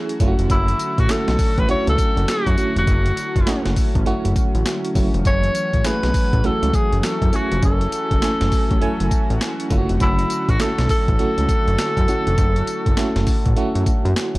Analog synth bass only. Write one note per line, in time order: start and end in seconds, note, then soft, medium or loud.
0.20 0.35 F#1 loud
0.39 0.48 F1 medium
0.50 0.74 F#1 loud
0.98 1.07 A1 medium
1.28 1.37 B1 loud
1.58 1.67 A1 loud
1.69 1.76 C#2 soft
1.87 1.96 C#2 loud
2.17 2.26 F#1 loud
2.47 2.56 F#2 loud
2.76 2.85 F1 medium
2.88 3.12 F#1 loud
3.36 3.45 F#1 medium
3.65 3.74 F#1 loud
3.95 4.04 A1 loud
4.06 4.14 F#1 soft
4.25 4.34 F#1 medium
4.55 4.64 A1 loud
4.95 5.11 F#1 medium
5.14 5.23 F1 loud
5.25 5.49 F#1 loud
5.73 5.82 A1 medium
6.03 6.12 B1 medium
6.33 6.42 A1 loud
6.62 6.72 C#2 medium
6.92 7.01 F#1 loud
7.22 7.31 F#2 medium
7.52 7.61 F1 loud
7.63 7.87 F#1 loud
8.11 8.20 F#1 medium
8.41 8.50 F#1 medium
8.71 8.80 A1 medium
8.82 8.89 F#1 soft
9.00 9.09 F#1 medium
9.30 9.39 A1 loud
9.71 9.86 F#1 medium
9.90 9.98 F1 medium
10.00 10.25 F#1 loud
10.49 10.58 A1 medium
10.78 10.87 B1 medium
11.08 11.17 A1 loud
11.19 11.27 C#2 soft
11.38 11.47 C#2 medium
11.67 11.76 F#1 loud
11.97 12.06 F#2 loud
12.27 12.36 F1 loud
12.38 12.62 F#1 loud
12.86 12.95 F#1 medium
13.16 13.25 F#1 medium
13.46 13.55 A1 loud
13.75 13.84 F#2 loud
14.05 14.14 F#2 loud
14.35 14.38 D#1 medium